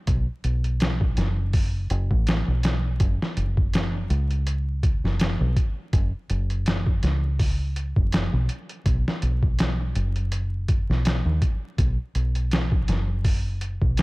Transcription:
0.07 0.26 B1 loud
0.07 kick loud
0.07 closed hi-hat medium
0.44 1.14 B1 medium
0.44 closed hi-hat medium
0.64 closed hi-hat soft
0.80 snare loud
0.80 closed hi-hat medium
1.01 kick medium
1.17 1.90 F#1 medium
1.17 snare soft
1.17 closed hi-hat medium
1.53 kick loud
1.53 open hi-hat medium
1.90 2.09 F#1 loud
1.90 closed hi-hat medium
2.11 2.43 A1 medium
2.11 kick medium
2.27 snare loud
2.27 closed hi-hat medium
2.48 2.97 B1 medium
2.63 snare loud
2.63 closed hi-hat medium
3.00 3.18 F#1 medium
3.00 kick loud
3.00 closed hi-hat medium
3.22 snare soft
3.37 4.07 F#1 medium
3.37 closed hi-hat medium
3.57 kick medium
3.73 snare medium
3.73 closed hi-hat medium
4.10 5.00 C#2 loud
4.10 closed hi-hat medium
4.31 closed hi-hat soft
4.47 closed hi-hat medium
4.83 kick loud
4.83 closed hi-hat medium
5.04 5.36 F#1 medium
5.04 snare soft
5.20 snare loud
5.20 closed hi-hat medium
5.41 5.55 B1 loud
5.56 kick medium
5.56 closed hi-hat medium
5.93 6.11 F#1 medium
5.93 kick loud
5.93 closed hi-hat medium
6.30 7.00 F#1 medium
6.30 closed hi-hat medium
6.50 closed hi-hat soft
6.66 snare loud
6.66 closed hi-hat medium
6.87 kick medium
7.03 7.93 C#2 loud
7.03 snare soft
7.03 closed hi-hat medium
7.39 kick loud
7.39 open hi-hat medium
7.76 closed hi-hat medium
7.96 8.28 F#1 medium
7.96 kick medium
8.12 snare loud
8.12 closed hi-hat medium
8.33 8.47 B1 loud
8.49 closed hi-hat medium
8.69 closed hi-hat soft
8.86 9.04 B1 loud
8.86 kick loud
8.86 closed hi-hat medium
9.08 snare soft
9.22 9.93 B1 medium
9.22 closed hi-hat medium
9.43 kick medium
9.59 snare loud
9.59 closed hi-hat medium
9.95 10.85 F#1 loud
9.95 closed hi-hat medium
10.16 closed hi-hat soft
10.32 closed hi-hat medium
10.68 kick loud
10.68 closed hi-hat medium
10.90 11.21 B1 medium
10.90 snare soft
11.05 snare loud
11.05 closed hi-hat medium
11.26 11.40 D#2 loud
11.42 kick medium
11.42 closed hi-hat medium
11.78 11.97 B1 loud
11.78 kick loud
11.78 closed hi-hat medium
12.15 12.85 B1 medium
12.15 closed hi-hat medium
12.35 closed hi-hat soft
12.51 snare loud
12.51 closed hi-hat medium
12.72 kick medium
12.88 13.78 F#1 loud
12.88 snare soft
12.88 closed hi-hat medium
13.25 kick loud
13.25 open hi-hat medium
13.61 closed hi-hat medium
13.82 14.02 B1 medium
13.82 kick medium
13.97 snare loud
13.97 closed hi-hat medium

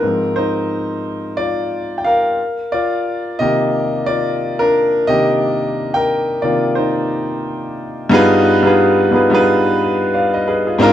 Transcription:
0.00 2.34 G#2 medium
0.00 2.35 F3 soft
0.00 2.35 C4 medium
0.00 0.33 D#4 medium
0.00 0.38 A#4 loud
0.36 1.34 D#4 medium
0.36 1.40 C5 medium
1.37 1.95 F4 medium
1.37 2.00 D5 medium
1.98 2.04 G5 medium
2.04 2.55 A#4 medium
2.04 2.54 F5 medium
2.72 3.36 F4 medium
2.72 3.41 D5 medium
3.39 5.07 C3 medium
3.39 5.07 D#3 soft
3.39 5.08 A#3 medium
3.39 4.04 G4 medium
3.39 4.02 D#5 medium
4.06 4.57 F4 medium
4.06 4.61 D5 loud
4.59 5.05 D4 medium
4.59 5.04 A#4 loud
5.07 6.05 C3 medium
5.07 6.05 D#3 medium
5.07 6.06 A#3 medium
5.07 5.91 G4 medium
5.07 5.97 D#5 loud
5.94 6.40 A#4 medium
5.94 6.39 G5 loud
6.42 6.73 C3 soft
6.42 6.73 D#3 soft
6.42 6.73 A#3 soft
6.42 6.75 F4 medium
6.42 6.74 D5 medium
6.75 7.74 D#4 medium
6.75 7.73 C5 medium
8.10 8.59 G2 loud
8.10 8.60 B3 loud
8.10 8.60 D#4 loud
8.10 8.61 F4 loud
8.10 8.61 G#4 loud
8.14 8.61 B4 loud
8.63 9.08 G2 medium
8.63 9.09 B3 medium
8.63 9.09 D#4 medium
8.63 9.10 F4 medium
8.63 9.10 G#4 medium
8.67 9.11 B4 loud
9.11 9.29 G2 medium
9.11 9.29 B3 medium
9.11 9.30 D#4 medium
9.11 9.31 F4 medium
9.11 9.31 G#4 medium
9.16 9.32 B4 medium
9.30 10.54 G2 loud
9.30 10.55 B3 medium
9.30 10.55 D#4 medium
9.30 10.14 F4 medium
9.30 10.14 G#4 medium
9.35 10.15 B4 loud
10.14 10.32 D5 medium
10.14 10.32 F5 medium
10.34 10.46 B4 medium
10.34 10.47 D#5 medium
10.48 10.65 G#4 medium
10.48 10.66 B4 medium
10.67 10.81 F4 medium
10.67 10.93 G#4 medium
10.79 10.93 G#2 loud
10.79 10.93 C4 loud
10.79 10.93 D4 loud
10.79 10.93 D#4 loud
10.79 10.93 F4 loud
10.83 10.93 A#4 loud

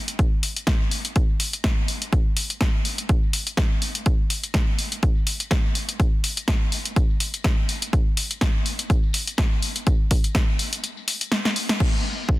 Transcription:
0.08 closed hi-hat medium
0.08 tambourine soft
0.19 kick loud
0.19 closed hi-hat medium
0.43 open hi-hat loud
0.43 tambourine loud
0.56 closed hi-hat medium
0.56 tambourine soft
0.67 kick loud
0.67 snare loud
0.67 closed hi-hat soft
0.91 open hi-hat medium
0.91 tambourine medium
1.05 closed hi-hat medium
1.05 tambourine soft
1.16 kick loud
1.16 closed hi-hat soft
1.29 tambourine soft
1.40 open hi-hat loud
1.40 tambourine loud
1.53 closed hi-hat medium
1.53 tambourine soft
1.64 kick loud
1.64 snare loud
1.64 closed hi-hat soft
1.77 tambourine soft
1.87 open hi-hat medium
1.87 tambourine medium
2.02 closed hi-hat medium
2.02 tambourine soft
2.13 kick loud
2.13 closed hi-hat soft
2.37 open hi-hat loud
2.37 tambourine loud
2.50 closed hi-hat medium
2.50 tambourine soft
2.61 kick loud
2.61 snare loud
2.61 closed hi-hat soft
2.74 tambourine soft
2.85 open hi-hat medium
2.85 tambourine medium
2.98 closed hi-hat medium
2.98 tambourine soft
3.09 kick loud
3.09 closed hi-hat soft
3.23 tambourine soft
3.33 open hi-hat loud
3.33 tambourine loud
3.47 closed hi-hat medium
3.47 tambourine soft
3.57 kick loud
3.57 snare loud
3.57 closed hi-hat soft
3.71 tambourine soft
3.82 open hi-hat medium
3.82 tambourine medium
3.95 closed hi-hat medium
3.95 tambourine soft
4.06 kick loud
4.06 closed hi-hat soft
4.06 tambourine medium
4.30 open hi-hat loud
4.30 tambourine medium
4.43 closed hi-hat medium
4.43 tambourine soft
4.54 kick loud
4.54 snare loud
4.54 closed hi-hat soft
4.78 open hi-hat medium
4.78 tambourine medium
4.92 closed hi-hat medium
4.92 tambourine soft
5.03 kick loud
5.03 closed hi-hat soft
5.15 tambourine soft
5.27 open hi-hat loud
5.27 tambourine medium
5.40 closed hi-hat medium
5.40 tambourine soft
5.51 kick loud
5.51 snare loud
5.51 closed hi-hat soft
5.65 tambourine soft
5.75 open hi-hat medium
5.75 tambourine medium
5.88 closed hi-hat medium
5.88 tambourine soft
6.00 kick loud
6.00 closed hi-hat medium
6.24 open hi-hat loud
6.24 tambourine medium
6.36 closed hi-hat medium
6.36 tambourine soft
6.48 kick loud
6.48 snare loud
6.48 closed hi-hat medium
6.72 open hi-hat medium
6.72 tambourine medium
6.85 closed hi-hat medium
6.85 tambourine soft
6.96 kick loud
6.96 closed hi-hat soft
6.96 tambourine medium
7.10 tambourine soft
7.20 open hi-hat loud
7.20 tambourine medium
7.34 closed hi-hat medium
7.34 tambourine soft
7.44 kick loud
7.44 snare loud
7.44 closed hi-hat medium
7.58 tambourine soft
7.69 open hi-hat medium
7.69 tambourine medium
7.82 closed hi-hat medium
7.82 tambourine soft
7.93 kick loud
7.93 closed hi-hat medium
8.17 open hi-hat loud
8.17 tambourine medium
8.30 closed hi-hat medium
8.30 tambourine soft
8.41 kick loud
8.41 snare loud
8.41 closed hi-hat medium
8.65 open hi-hat medium
8.65 tambourine medium
8.79 closed hi-hat medium
8.79 tambourine soft
8.90 kick loud
8.90 closed hi-hat medium
8.90 tambourine medium
9.03 tambourine soft
9.13 open hi-hat medium
9.13 tambourine medium
9.27 closed hi-hat medium
9.27 tambourine soft
9.37 kick loud
9.37 snare loud
9.37 closed hi-hat medium
9.37 tambourine soft
9.52 tambourine soft
9.62 open hi-hat medium
9.62 tambourine medium
9.76 closed hi-hat medium
9.76 tambourine soft
9.87 kick loud
9.87 closed hi-hat medium
9.87 tambourine soft
10.11 kick medium
10.11 open hi-hat loud
10.11 tambourine medium
10.24 closed hi-hat medium
10.24 tambourine soft
10.35 kick loud
10.35 snare loud
10.35 closed hi-hat medium
10.35 tambourine medium
10.49 tambourine soft
10.59 open hi-hat medium
10.59 tambourine medium
10.73 closed hi-hat medium
10.73 tambourine soft
10.84 closed hi-hat medium
10.84 tambourine medium
10.97 tambourine soft
11.08 open hi-hat loud
11.08 tambourine medium
11.21 closed hi-hat medium
11.21 tambourine soft
11.32 snare loud
11.32 closed hi-hat medium
11.32 tambourine soft
11.45 snare medium
11.45 tambourine soft
11.56 open hi-hat medium
11.56 tambourine medium
11.69 snare loud
11.69 closed hi-hat medium
11.80 kick loud
11.80 crash medium
12.29 kick loud

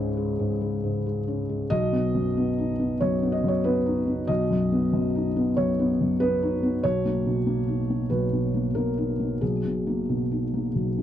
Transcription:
0.00 0.36 C#2 medium
0.00 0.39 G#2 medium
0.00 0.17 G#3 soft
0.00 0.30 C#4 soft
0.00 1.05 G#4 medium
0.17 0.52 G#3 soft
0.39 0.74 G#2 soft
0.61 0.96 G#3 soft
0.84 1.19 G#2 soft
1.06 1.41 G#3 soft
1.28 1.63 C#4 soft
1.49 1.71 G#3 soft
1.70 2.97 B1 medium
1.70 3.00 D#5 loud
1.93 2.27 B3 soft
2.15 2.49 F#2 soft
2.37 2.71 B3 soft
2.58 2.93 D#4 soft
2.80 3.14 B3 soft
3.01 3.36 F#2 soft
3.01 3.33 C#5 medium
3.23 3.57 B3 soft
3.32 3.49 D#5 medium
3.44 3.78 F#2 soft
3.48 3.65 C#5 medium
3.64 3.99 B3 medium
3.64 4.29 B4 medium
3.86 4.20 D#4 soft
4.07 4.42 B3 soft
4.27 5.53 B1 medium
4.27 5.56 D#5 medium
4.50 4.85 F#2 soft
4.72 5.06 B3 soft
4.94 5.27 F#2 medium
5.15 5.49 D#4 soft
5.36 5.70 B3 soft
5.57 5.91 F#2 soft
5.57 6.20 C#5 medium
5.79 6.12 B3 medium
6.01 6.33 F#2 soft
6.20 6.54 B3 medium
6.20 6.83 B4 medium
6.43 6.75 D#4 soft
6.63 6.83 B3 soft
6.83 8.06 B1 medium
6.83 8.10 C#5 loud
7.05 7.38 A#3 soft
7.26 7.59 B2 soft
7.47 7.80 A#3 medium
7.68 8.01 D#4 soft
7.90 8.23 A#3 soft
8.10 9.38 B1 medium
8.10 8.74 B4 medium
8.33 8.66 B2 soft
8.54 8.88 A#3 soft
8.75 9.11 B2 soft
8.75 9.41 A#4 medium
8.98 9.33 D#4 soft
9.20 9.55 A#3 soft
9.41 10.71 B1 soft
9.41 11.02 G#4 medium
9.65 10.00 B2 soft
9.87 10.22 A#3 soft
10.09 10.44 B2 soft
10.32 10.66 D#4 soft
10.54 10.88 A#3 soft
10.75 11.02 B1 soft
10.98 11.02 B2 soft

